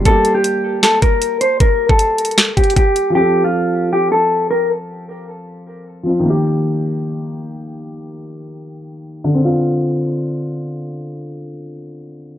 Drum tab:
HH |x-----x-----x-----------x-----x-----x-----x-----|x-----------x-----x-x-x-x-----x-x-x-x-----x-----|------------------------------------------------|------------------------------------------------|
SD |------------------------o-----------------------|------------------------o-----------------------|------------------------------------------------|------------------------------------------------|
BD |o-----------------------------o-----------------|o--------o--------------------o-----o-----------|------------------------------------------------|------------------------------------------------|

HH |------------------------------------------------|------------------------------------------------|------------------------------------------------|------------------------------------------------|
SD |------------------------------------------------|------------------------------------------------|------------------------------------------------|------------------------------------------------|
BD |------------------------------------------------|------------------------------------------------|------------------------------------------------|------------------------------------------------|